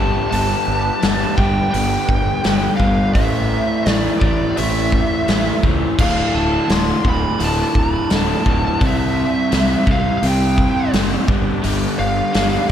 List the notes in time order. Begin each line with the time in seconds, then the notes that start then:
Already playing: G1 G2 D3 G3 B3 D4 B4 A5
0.00 G4
0.30 G1 G2 D3 G3 A5, open hi-hat
0.68 G1
1.02 G1 G2 D3 G3, snare, open hi-hat
1.37 G1 G2 D3 G3 G5, kick
1.71 G1 G2 D3 G3 G5, open hi-hat
2.09 G1, kick
2.44 G1 G2 D3 G3, snare, open hi-hat
2.77 G1 G2 D3 F5, kick
2.81 G3
3.13 A1 A2 E3 A3 C4 E4 A4 C5 E5, kick, open hi-hat
3.86 A1 A2 E3 A3, snare, open hi-hat
3.90 D5
4.20 A1 A2 E3 A3 D5, kick
4.56 A1 A2 E3 A3 E5, open hi-hat
4.92 kick
5.28 A1 A2 E3 A3, snare, open hi-hat
5.63 C#2 A2 E3 A3, kick
5.98 D1 D2 A2 D3 D4 F4 A4 D5 F5, kick, crash
6.34 D1 A5
6.68 D1 D2 A2 D3 C6, snare, open hi-hat
7.04 D1 D2 A2 D3, kick
7.09 B5
7.39 D1 D2 A2 D3, open hi-hat
7.44 A5
7.75 D1, kick
7.79 B5
8.10 D1 D2 A2 D3, snare, open hi-hat
8.16 A5
8.45 D1 D2 A2 D3, kick
8.80 C2 C3 G3 C4 E4 G4 C5 E5, kick, open hi-hat
8.87 E5
9.51 C2 C3 G3 C4, snare, open hi-hat
9.87 C2 C3 G3 C4, kick
9.91 F5
10.17 F5
10.22 C2 C3 G3 C4 G5, open hi-hat
10.58 kick
10.93 F#1 C3 G3 C4, snare, open hi-hat
11.26 G1 G2 D3 G3 D4 G4 B4 D5, kick
11.62 G1 G2 D3 G3, open hi-hat
11.99 G1 F5
12.33 G1 G2 D3 G3, snare, open hi-hat